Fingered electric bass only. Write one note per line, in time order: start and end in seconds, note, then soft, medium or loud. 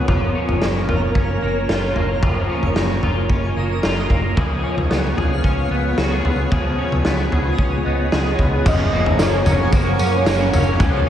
0.08 0.32 F#1 loud
0.48 0.60 F#1 medium
0.62 0.85 F#1 medium
0.89 1.12 F#1 medium
1.15 1.39 F#1 medium
1.42 1.66 F#1 medium
1.69 1.93 F#1 medium
1.96 2.19 F#1 medium
2.23 2.46 F#1 medium
2.63 2.75 F#1 medium
2.76 3.00 F#1 medium
3.03 3.27 F#1 medium
3.30 3.53 F#1 medium
3.56 3.80 F#1 loud
3.83 4.07 F#1 medium
4.10 4.34 F#1 medium
4.37 4.61 C#2 loud
4.77 4.89 C#2 medium
4.90 5.14 C#2 medium
5.17 5.41 C#2 medium
5.44 5.68 C#2 medium
5.71 5.94 C#2 medium
5.98 6.21 C#2 medium
6.25 6.48 C#2 loud
6.52 6.75 C#2 medium
6.92 7.03 C#2 medium
7.05 7.29 C#2 loud
7.32 7.55 C#2 medium
7.59 7.82 C#2 medium
7.86 8.09 C#2 medium
8.13 8.36 C#2 medium
8.39 8.62 C#2 medium
8.66 8.89 F#1 loud
8.93 9.16 F#1 medium
9.20 9.43 F#1 medium
9.46 9.70 F#1 loud
9.72 9.96 F#1 loud
10.00 10.23 F#2 loud
10.26 10.50 F#1 loud
10.53 10.77 F#1 loud
10.80 11.04 C#2 loud